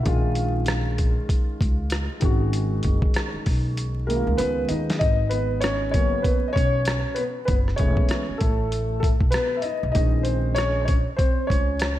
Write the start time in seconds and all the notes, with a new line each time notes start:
0.03 A#1 D#3 G#3 C#4, kick, closed hi-hat
0.08 F4
0.35 closed hi-hat
0.66 cross-stick, closed hi-hat
0.98 kick, closed hi-hat
1.29 kick, closed hi-hat
1.61 C#2, kick, closed hi-hat
1.90 cross-stick, closed hi-hat
2.20 G#1 D#3 G#3 C#4, kick, closed hi-hat
2.25 F#4
2.53 closed hi-hat
2.83 F#1, kick, closed hi-hat
3.02 kick
3.14 cross-stick, closed hi-hat
3.34 muted upright bass stroke
3.46 B1, kick, open hi-hat
3.77 closed hi-hat
4.07 D#3 G#3 A#3 C#4 E4 A#4, closed hi-hat
4.16 F4
4.27 C#2
4.37 C#2 B3 B4, closed hi-hat
4.68 D#2 D#4 D#5, closed hi-hat
4.90 snare, closed hi-hat
4.99 G#1 D#4 D#5, kick, closed hi-hat
5.29 B3 B4, closed hi-hat
5.61 C#4 C#5, cross-stick, closed hi-hat
5.91 C#3 F#3 A#3 B3 C#4 C#5, kick, closed hi-hat
6.22 B3 B4, kick, closed hi-hat
6.48 D#5
6.53 B1 C#4 C#5, kick
6.57 closed hi-hat
6.85 cross-stick, closed hi-hat
7.14 B3 B4, closed hi-hat
7.45 F#1 B3 B4, kick, closed hi-hat
7.68 cross-stick
7.76 E1 E3 G#3 A3 B3 C#4 C#5, kick, closed hi-hat
7.97 kick
8.09 cross-stick, closed hi-hat
8.29 muted upright bass stroke
8.38 A1 A3 A4, kick, closed hi-hat
8.72 closed hi-hat
9.00 A3 A4, kick, closed hi-hat
9.20 B1, kick
9.30 B3 B4, cross-stick, closed hi-hat
9.57 E5
9.61 D#4 D#5, closed hi-hat
9.83 B1
9.92 A#1 D#3 G#3 C4 C#4 D#4 D#5, kick, closed hi-hat
10.23 C4 C5, closed hi-hat
10.55 C#4 C#5, cross-stick, closed hi-hat
10.81 C5
10.85 C#4 C#5, kick, closed hi-hat
11.16 C4 C5, kick, closed hi-hat
11.47 C#2 C#4 C#5, kick
11.51 closed hi-hat
11.80 cross-stick, closed hi-hat